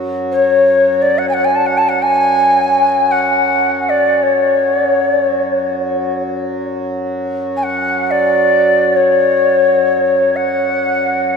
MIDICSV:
0, 0, Header, 1, 3, 480
1, 0, Start_track
1, 0, Tempo, 500000
1, 10913, End_track
2, 0, Start_track
2, 0, Title_t, "Native American-style wooden flute"
2, 0, Program_c, 0, 77
2, 308, Note_on_c, 0, 73, 72
2, 977, Note_on_c, 0, 74, 70
2, 992, Note_off_c, 0, 73, 0
2, 1135, Note_on_c, 0, 78, 72
2, 1149, Note_off_c, 0, 74, 0
2, 1235, Note_off_c, 0, 78, 0
2, 1241, Note_on_c, 0, 80, 57
2, 1281, Note_on_c, 0, 78, 81
2, 1296, Note_off_c, 0, 80, 0
2, 1388, Note_on_c, 0, 80, 74
2, 1402, Note_off_c, 0, 78, 0
2, 1492, Note_on_c, 0, 81, 75
2, 1507, Note_off_c, 0, 80, 0
2, 1595, Note_on_c, 0, 78, 80
2, 1609, Note_off_c, 0, 81, 0
2, 1705, Note_on_c, 0, 81, 85
2, 1719, Note_off_c, 0, 78, 0
2, 1812, Note_on_c, 0, 78, 77
2, 1826, Note_off_c, 0, 81, 0
2, 1941, Note_on_c, 0, 80, 95
2, 1956, Note_off_c, 0, 78, 0
2, 2988, Note_on_c, 0, 78, 77
2, 3002, Note_off_c, 0, 80, 0
2, 3738, Note_on_c, 0, 74, 66
2, 3752, Note_off_c, 0, 78, 0
2, 4057, Note_on_c, 0, 73, 66
2, 4072, Note_off_c, 0, 74, 0
2, 4585, Note_off_c, 0, 73, 0
2, 4585, Note_on_c, 0, 74, 66
2, 4701, Note_off_c, 0, 74, 0
2, 4701, Note_on_c, 0, 73, 66
2, 5508, Note_off_c, 0, 73, 0
2, 7264, Note_on_c, 0, 80, 48
2, 7327, Note_on_c, 0, 78, 66
2, 7342, Note_off_c, 0, 80, 0
2, 7746, Note_off_c, 0, 78, 0
2, 7746, Note_on_c, 0, 78, 73
2, 7783, Note_on_c, 0, 74, 79
2, 7793, Note_off_c, 0, 78, 0
2, 8567, Note_off_c, 0, 74, 0
2, 8567, Note_on_c, 0, 74, 71
2, 8605, Note_on_c, 0, 73, 77
2, 8614, Note_off_c, 0, 74, 0
2, 9945, Note_on_c, 0, 78, 81
2, 9959, Note_off_c, 0, 73, 0
2, 10913, Note_off_c, 0, 78, 0
2, 10913, End_track
3, 0, Start_track
3, 0, Title_t, "Harmonium"
3, 0, Program_c, 1, 20
3, 0, Note_on_c, 1, 42, 49
3, 0, Note_on_c, 1, 54, 58
3, 10913, Note_off_c, 1, 42, 0
3, 10913, Note_off_c, 1, 54, 0
3, 10913, End_track
0, 0, End_of_file